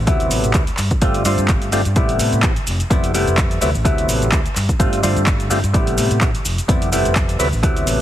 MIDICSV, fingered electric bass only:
0, 0, Header, 1, 2, 480
1, 0, Start_track
1, 0, Tempo, 472441
1, 74, Time_signature, 4, 2, 24, 8
1, 8143, End_track
2, 0, Start_track
2, 0, Title_t, "Fingered electric bass"
2, 0, Program_c, 0, 33
2, 73, Note_on_c, 0, 38, 101
2, 275, Note_off_c, 0, 38, 0
2, 315, Note_on_c, 0, 33, 101
2, 422, Note_off_c, 0, 33, 0
2, 447, Note_on_c, 0, 33, 96
2, 536, Note_off_c, 0, 33, 0
2, 555, Note_on_c, 0, 38, 92
2, 662, Note_off_c, 0, 38, 0
2, 796, Note_on_c, 0, 43, 89
2, 903, Note_off_c, 0, 43, 0
2, 1034, Note_on_c, 0, 31, 98
2, 1236, Note_off_c, 0, 31, 0
2, 1275, Note_on_c, 0, 43, 100
2, 1382, Note_off_c, 0, 43, 0
2, 1404, Note_on_c, 0, 43, 83
2, 1494, Note_off_c, 0, 43, 0
2, 1514, Note_on_c, 0, 31, 98
2, 1716, Note_off_c, 0, 31, 0
2, 1753, Note_on_c, 0, 43, 88
2, 1862, Note_off_c, 0, 43, 0
2, 1885, Note_on_c, 0, 43, 97
2, 1975, Note_off_c, 0, 43, 0
2, 1994, Note_on_c, 0, 33, 98
2, 2195, Note_off_c, 0, 33, 0
2, 2235, Note_on_c, 0, 45, 100
2, 2342, Note_off_c, 0, 45, 0
2, 2365, Note_on_c, 0, 45, 94
2, 2455, Note_off_c, 0, 45, 0
2, 2475, Note_on_c, 0, 33, 87
2, 2582, Note_off_c, 0, 33, 0
2, 2714, Note_on_c, 0, 29, 93
2, 2822, Note_off_c, 0, 29, 0
2, 2953, Note_on_c, 0, 41, 95
2, 3155, Note_off_c, 0, 41, 0
2, 3195, Note_on_c, 0, 29, 99
2, 3303, Note_off_c, 0, 29, 0
2, 3327, Note_on_c, 0, 29, 82
2, 3416, Note_off_c, 0, 29, 0
2, 3433, Note_on_c, 0, 41, 95
2, 3635, Note_off_c, 0, 41, 0
2, 3674, Note_on_c, 0, 38, 88
2, 3782, Note_off_c, 0, 38, 0
2, 3807, Note_on_c, 0, 33, 101
2, 3896, Note_off_c, 0, 33, 0
2, 3914, Note_on_c, 0, 38, 101
2, 4116, Note_off_c, 0, 38, 0
2, 4155, Note_on_c, 0, 33, 102
2, 4263, Note_off_c, 0, 33, 0
2, 4288, Note_on_c, 0, 33, 95
2, 4376, Note_off_c, 0, 33, 0
2, 4395, Note_on_c, 0, 38, 90
2, 4502, Note_off_c, 0, 38, 0
2, 4635, Note_on_c, 0, 43, 90
2, 4743, Note_off_c, 0, 43, 0
2, 4875, Note_on_c, 0, 31, 98
2, 5076, Note_off_c, 0, 31, 0
2, 5118, Note_on_c, 0, 43, 102
2, 5224, Note_off_c, 0, 43, 0
2, 5248, Note_on_c, 0, 43, 87
2, 5336, Note_off_c, 0, 43, 0
2, 5355, Note_on_c, 0, 31, 93
2, 5556, Note_off_c, 0, 31, 0
2, 5596, Note_on_c, 0, 43, 84
2, 5703, Note_off_c, 0, 43, 0
2, 5726, Note_on_c, 0, 43, 98
2, 5815, Note_off_c, 0, 43, 0
2, 5835, Note_on_c, 0, 33, 102
2, 6036, Note_off_c, 0, 33, 0
2, 6076, Note_on_c, 0, 45, 103
2, 6183, Note_off_c, 0, 45, 0
2, 6205, Note_on_c, 0, 45, 100
2, 6295, Note_off_c, 0, 45, 0
2, 6315, Note_on_c, 0, 33, 89
2, 6423, Note_off_c, 0, 33, 0
2, 6555, Note_on_c, 0, 29, 91
2, 6663, Note_off_c, 0, 29, 0
2, 6795, Note_on_c, 0, 41, 96
2, 6996, Note_off_c, 0, 41, 0
2, 7035, Note_on_c, 0, 29, 104
2, 7143, Note_off_c, 0, 29, 0
2, 7167, Note_on_c, 0, 29, 88
2, 7256, Note_off_c, 0, 29, 0
2, 7275, Note_on_c, 0, 41, 97
2, 7476, Note_off_c, 0, 41, 0
2, 7515, Note_on_c, 0, 38, 85
2, 7623, Note_off_c, 0, 38, 0
2, 7648, Note_on_c, 0, 33, 101
2, 7736, Note_off_c, 0, 33, 0
2, 7756, Note_on_c, 0, 38, 99
2, 7957, Note_off_c, 0, 38, 0
2, 7998, Note_on_c, 0, 33, 106
2, 8104, Note_off_c, 0, 33, 0
2, 8143, End_track
0, 0, End_of_file